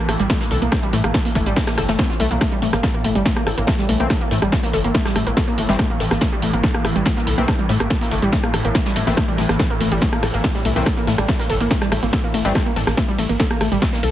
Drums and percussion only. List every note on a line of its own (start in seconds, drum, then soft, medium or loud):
0.09 cross-stick medium
0.09 open hi-hat loud
0.20 closed hi-hat medium
0.30 kick loud
0.30 snare loud
0.30 closed hi-hat medium
0.30 shaker medium
0.40 snare soft
0.51 open hi-hat loud
0.51 shaker medium
0.62 closed hi-hat medium
0.72 kick loud
0.72 cross-stick loud
0.72 snare loud
0.72 closed hi-hat medium
0.72 shaker medium
0.93 snare soft
0.93 open hi-hat loud
0.93 shaker medium
1.04 cross-stick loud
1.04 closed hi-hat medium
1.14 kick loud
1.14 snare loud
1.14 closed hi-hat medium
1.14 shaker medium
1.25 snare soft
1.25 open hi-hat medium
1.35 kick medium
1.35 snare medium
1.35 open hi-hat loud
1.35 shaker medium
1.46 closed hi-hat soft
1.46 closed hi-hat medium
1.56 kick loud
1.56 snare loud
1.56 closed hi-hat medium
1.56 shaker medium
1.67 cross-stick medium
1.67 snare loud
1.67 shaker medium
1.77 cross-stick medium
1.77 snare loud
1.77 open hi-hat loud
1.77 shaker medium
1.89 snare loud
1.89 closed hi-hat medium
1.89 shaker medium
1.99 kick loud
1.99 snare loud
1.99 open hi-hat medium
1.99 shaker medium
2.10 snare soft
2.20 open hi-hat loud
2.20 shaker medium
2.31 closed hi-hat medium
2.41 kick loud
2.41 cross-stick medium
2.41 snare loud
2.41 closed hi-hat medium
2.41 shaker loud
2.62 snare soft
2.62 open hi-hat loud
2.62 shaker medium
2.73 cross-stick loud
2.73 snare soft
2.73 closed hi-hat medium
2.83 kick loud
2.83 snare loud
2.83 closed hi-hat medium
2.83 shaker medium
3.04 open hi-hat loud
3.04 shaker medium
3.15 closed hi-hat medium
3.26 kick loud
3.26 snare loud
3.26 closed hi-hat medium
3.26 shaker medium
3.36 cross-stick medium
3.36 closed hi-hat soft
3.47 cross-stick medium
3.47 open hi-hat loud
3.47 shaker medium
3.58 closed hi-hat medium
3.67 kick loud
3.67 snare loud
3.67 closed hi-hat medium
3.67 shaker medium
3.79 snare medium
3.89 open hi-hat loud
3.89 shaker medium
4.00 closed hi-hat medium
4.10 kick loud
4.10 cross-stick medium
4.10 snare loud
4.10 closed hi-hat medium
4.10 shaker loud
4.31 snare soft
4.31 open hi-hat loud
4.31 shaker medium
4.42 cross-stick medium
4.42 closed hi-hat medium
4.52 kick loud
4.52 snare loud
4.52 closed hi-hat medium
4.52 shaker medium
4.63 snare soft
4.63 open hi-hat medium
4.73 snare medium
4.73 open hi-hat loud
4.73 shaker medium
4.84 closed hi-hat medium
4.84 closed hi-hat soft
4.95 kick loud
4.95 snare loud
4.95 closed hi-hat medium
4.95 shaker medium
5.05 cross-stick medium
5.05 snare medium
5.16 cross-stick medium
5.16 open hi-hat loud
5.16 shaker medium
5.27 closed hi-hat medium
5.27 closed hi-hat soft
5.37 kick loud
5.37 snare loud
5.37 open hi-hat medium
5.58 open hi-hat loud
5.58 shaker medium
5.69 snare medium
5.69 closed hi-hat medium
5.79 kick loud
5.79 cross-stick medium
5.79 snare loud
5.79 closed hi-hat medium
5.79 shaker medium
6.00 snare soft
6.00 open hi-hat loud
6.00 shaker medium
6.11 cross-stick loud
6.11 snare soft
6.11 closed hi-hat medium
6.21 kick loud
6.21 snare loud
6.21 closed hi-hat medium
6.21 shaker medium
6.42 open hi-hat loud
6.42 shaker medium
6.53 closed hi-hat medium
6.63 kick loud
6.63 snare loud
6.63 closed hi-hat medium
6.63 shaker medium
6.74 cross-stick medium
6.74 closed hi-hat soft
6.85 cross-stick medium
6.85 open hi-hat loud
6.85 shaker medium
6.96 closed hi-hat medium
7.05 kick loud
7.05 snare loud
7.05 closed hi-hat medium
7.05 shaker medium
7.17 snare soft
7.27 open hi-hat loud
7.27 shaker medium
7.38 closed hi-hat medium
7.48 kick loud
7.48 cross-stick medium
7.48 snare loud
7.48 closed hi-hat medium
7.48 shaker loud
7.69 snare soft
7.69 open hi-hat loud
7.69 shaker medium
7.80 cross-stick loud
7.80 closed hi-hat medium
7.90 kick loud
7.90 snare loud
7.90 closed hi-hat medium
7.90 shaker medium
8.01 snare medium
8.01 open hi-hat medium
8.11 snare medium
8.11 open hi-hat loud
8.11 shaker medium
8.22 closed hi-hat soft
8.22 closed hi-hat medium
8.32 kick loud
8.32 snare loud
8.32 closed hi-hat medium
8.32 shaker medium
8.44 cross-stick medium
8.54 cross-stick medium
8.54 open hi-hat loud
8.54 shaker medium
8.65 closed hi-hat medium
8.75 kick loud
8.75 snare loud
8.75 open hi-hat medium
8.75 shaker medium
8.86 snare medium
8.86 shaker medium
8.96 snare loud
8.96 open hi-hat loud
8.96 shaker medium
9.07 snare loud
9.07 closed hi-hat medium
9.07 shaker medium
9.17 kick loud
9.17 cross-stick loud
9.17 snare loud
9.17 closed hi-hat medium
9.17 ride medium
9.17 shaker loud
9.38 snare soft
9.38 open hi-hat loud
9.38 ride medium
9.38 shaker medium
9.49 cross-stick loud
9.49 snare soft
9.49 closed hi-hat medium
9.59 kick loud
9.59 snare loud
9.59 closed hi-hat medium
9.59 ride medium
9.59 shaker medium
9.80 open hi-hat loud
9.80 ride medium
9.80 shaker medium
9.92 closed hi-hat medium
10.01 kick loud
10.01 snare loud
10.01 closed hi-hat medium
10.01 ride medium
10.01 shaker medium
10.13 cross-stick medium
10.13 closed hi-hat soft
10.23 cross-stick medium
10.23 open hi-hat loud
10.23 ride medium
10.23 shaker medium
10.34 closed hi-hat medium
10.44 kick loud
10.44 snare loud
10.44 closed hi-hat medium
10.44 ride medium
10.44 shaker medium
10.55 snare medium
10.65 open hi-hat loud
10.65 ride medium
10.65 shaker medium
10.76 closed hi-hat medium
10.86 kick loud
10.86 cross-stick loud
10.86 snare loud
10.86 closed hi-hat medium
10.86 ride medium
10.86 shaker medium
11.07 snare soft
11.07 open hi-hat loud
11.07 ride medium
11.07 shaker medium
11.18 cross-stick loud
11.18 closed hi-hat medium
11.28 kick loud
11.28 snare loud
11.28 closed hi-hat medium
11.28 ride medium
11.28 shaker medium
11.39 snare soft
11.39 open hi-hat medium
11.49 snare medium
11.49 open hi-hat loud
11.49 ride medium
11.49 shaker medium
11.60 closed hi-hat soft
11.60 closed hi-hat medium
11.71 kick loud
11.71 snare loud
11.71 closed hi-hat medium
11.71 ride medium
11.71 shaker loud
11.82 cross-stick medium
11.82 snare medium
11.92 cross-stick loud
11.92 open hi-hat loud
11.92 ride medium
11.92 shaker medium
12.03 closed hi-hat soft
12.03 closed hi-hat medium
12.13 kick loud
12.13 snare loud
12.13 open hi-hat medium
12.13 ride medium
12.34 open hi-hat loud
12.34 ride medium
12.34 shaker medium
12.45 snare soft
12.45 closed hi-hat medium
12.55 kick loud
12.55 cross-stick loud
12.55 snare loud
12.55 closed hi-hat medium
12.55 ride medium
12.55 shaker medium
12.76 snare soft
12.76 open hi-hat loud
12.76 ride medium
12.76 shaker medium
12.87 cross-stick loud
12.87 snare soft
12.87 closed hi-hat medium
12.97 kick loud
12.97 snare loud
12.97 closed hi-hat medium
12.97 ride medium
12.97 shaker medium
13.19 open hi-hat loud
13.19 ride medium
13.19 shaker medium
13.29 closed hi-hat medium
13.40 kick loud
13.40 snare loud
13.40 closed hi-hat medium
13.40 ride medium
13.40 shaker medium
13.51 cross-stick medium
13.51 closed hi-hat soft
13.61 cross-stick medium
13.61 open hi-hat loud
13.61 ride medium
13.61 shaker medium
13.72 closed hi-hat medium
13.82 kick loud
13.82 snare loud
13.82 closed hi-hat medium
13.82 ride medium
13.82 shaker medium
13.93 snare medium
14.03 open hi-hat loud
14.03 ride medium
14.03 shaker medium